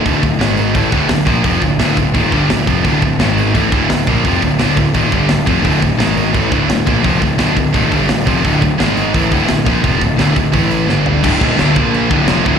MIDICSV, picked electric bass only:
0, 0, Header, 1, 2, 480
1, 0, Start_track
1, 0, Tempo, 349447
1, 70, Time_signature, 4, 2, 24, 8
1, 17292, End_track
2, 0, Start_track
2, 0, Title_t, "Picked electric bass"
2, 0, Program_c, 0, 34
2, 77, Note_on_c, 0, 26, 87
2, 296, Note_off_c, 0, 26, 0
2, 312, Note_on_c, 0, 26, 73
2, 530, Note_off_c, 0, 26, 0
2, 538, Note_on_c, 0, 32, 93
2, 989, Note_off_c, 0, 32, 0
2, 1033, Note_on_c, 0, 33, 93
2, 1254, Note_off_c, 0, 33, 0
2, 1266, Note_on_c, 0, 26, 86
2, 1487, Note_off_c, 0, 26, 0
2, 1495, Note_on_c, 0, 26, 70
2, 1724, Note_off_c, 0, 26, 0
2, 1747, Note_on_c, 0, 34, 94
2, 1964, Note_off_c, 0, 34, 0
2, 1972, Note_on_c, 0, 29, 93
2, 2203, Note_off_c, 0, 29, 0
2, 2218, Note_on_c, 0, 26, 77
2, 2440, Note_off_c, 0, 26, 0
2, 2448, Note_on_c, 0, 26, 91
2, 2680, Note_off_c, 0, 26, 0
2, 2709, Note_on_c, 0, 26, 74
2, 2932, Note_off_c, 0, 26, 0
2, 2944, Note_on_c, 0, 27, 96
2, 3169, Note_off_c, 0, 27, 0
2, 3189, Note_on_c, 0, 31, 88
2, 3394, Note_off_c, 0, 31, 0
2, 3402, Note_on_c, 0, 26, 71
2, 3637, Note_off_c, 0, 26, 0
2, 3667, Note_on_c, 0, 29, 87
2, 3891, Note_off_c, 0, 29, 0
2, 3915, Note_on_c, 0, 26, 91
2, 4135, Note_off_c, 0, 26, 0
2, 4147, Note_on_c, 0, 26, 73
2, 4371, Note_off_c, 0, 26, 0
2, 4392, Note_on_c, 0, 32, 94
2, 4837, Note_off_c, 0, 32, 0
2, 4870, Note_on_c, 0, 33, 103
2, 5092, Note_off_c, 0, 33, 0
2, 5111, Note_on_c, 0, 26, 93
2, 5333, Note_off_c, 0, 26, 0
2, 5365, Note_on_c, 0, 26, 74
2, 5581, Note_off_c, 0, 26, 0
2, 5592, Note_on_c, 0, 34, 86
2, 5814, Note_off_c, 0, 34, 0
2, 5827, Note_on_c, 0, 29, 92
2, 6051, Note_off_c, 0, 29, 0
2, 6076, Note_on_c, 0, 26, 68
2, 6296, Note_off_c, 0, 26, 0
2, 6310, Note_on_c, 0, 26, 93
2, 6533, Note_off_c, 0, 26, 0
2, 6552, Note_on_c, 0, 26, 76
2, 6774, Note_off_c, 0, 26, 0
2, 6791, Note_on_c, 0, 27, 87
2, 7014, Note_off_c, 0, 27, 0
2, 7038, Note_on_c, 0, 31, 90
2, 7257, Note_off_c, 0, 31, 0
2, 7288, Note_on_c, 0, 26, 77
2, 7503, Note_off_c, 0, 26, 0
2, 7513, Note_on_c, 0, 29, 93
2, 7735, Note_off_c, 0, 29, 0
2, 7755, Note_on_c, 0, 26, 91
2, 7976, Note_off_c, 0, 26, 0
2, 8002, Note_on_c, 0, 26, 68
2, 8220, Note_off_c, 0, 26, 0
2, 8244, Note_on_c, 0, 32, 91
2, 8684, Note_off_c, 0, 32, 0
2, 8714, Note_on_c, 0, 33, 95
2, 8936, Note_off_c, 0, 33, 0
2, 8947, Note_on_c, 0, 26, 81
2, 9172, Note_off_c, 0, 26, 0
2, 9201, Note_on_c, 0, 26, 74
2, 9420, Note_off_c, 0, 26, 0
2, 9439, Note_on_c, 0, 34, 92
2, 9659, Note_off_c, 0, 34, 0
2, 9675, Note_on_c, 0, 29, 101
2, 9896, Note_off_c, 0, 29, 0
2, 9910, Note_on_c, 0, 26, 75
2, 10134, Note_off_c, 0, 26, 0
2, 10154, Note_on_c, 0, 26, 92
2, 10376, Note_off_c, 0, 26, 0
2, 10395, Note_on_c, 0, 26, 74
2, 10617, Note_off_c, 0, 26, 0
2, 10634, Note_on_c, 0, 27, 96
2, 10857, Note_off_c, 0, 27, 0
2, 10875, Note_on_c, 0, 31, 96
2, 11093, Note_off_c, 0, 31, 0
2, 11101, Note_on_c, 0, 26, 78
2, 11330, Note_off_c, 0, 26, 0
2, 11353, Note_on_c, 0, 29, 93
2, 11576, Note_off_c, 0, 29, 0
2, 11606, Note_on_c, 0, 26, 95
2, 11823, Note_off_c, 0, 26, 0
2, 11837, Note_on_c, 0, 26, 70
2, 12059, Note_off_c, 0, 26, 0
2, 12075, Note_on_c, 0, 32, 89
2, 12521, Note_off_c, 0, 32, 0
2, 12551, Note_on_c, 0, 33, 94
2, 12776, Note_off_c, 0, 33, 0
2, 12799, Note_on_c, 0, 26, 91
2, 13020, Note_off_c, 0, 26, 0
2, 13032, Note_on_c, 0, 26, 73
2, 13256, Note_off_c, 0, 26, 0
2, 13269, Note_on_c, 0, 34, 87
2, 13495, Note_off_c, 0, 34, 0
2, 13515, Note_on_c, 0, 29, 90
2, 13738, Note_off_c, 0, 29, 0
2, 13758, Note_on_c, 0, 26, 75
2, 13973, Note_off_c, 0, 26, 0
2, 13981, Note_on_c, 0, 26, 92
2, 14211, Note_off_c, 0, 26, 0
2, 14228, Note_on_c, 0, 26, 71
2, 14455, Note_off_c, 0, 26, 0
2, 14474, Note_on_c, 0, 33, 88
2, 14921, Note_off_c, 0, 33, 0
2, 14933, Note_on_c, 0, 31, 89
2, 15390, Note_off_c, 0, 31, 0
2, 15439, Note_on_c, 0, 26, 97
2, 15660, Note_off_c, 0, 26, 0
2, 15673, Note_on_c, 0, 27, 92
2, 15882, Note_off_c, 0, 27, 0
2, 15890, Note_on_c, 0, 26, 92
2, 16125, Note_off_c, 0, 26, 0
2, 16149, Note_on_c, 0, 34, 84
2, 16598, Note_off_c, 0, 34, 0
2, 16636, Note_on_c, 0, 26, 97
2, 16847, Note_off_c, 0, 26, 0
2, 16855, Note_on_c, 0, 29, 94
2, 17087, Note_off_c, 0, 29, 0
2, 17114, Note_on_c, 0, 26, 90
2, 17292, Note_off_c, 0, 26, 0
2, 17292, End_track
0, 0, End_of_file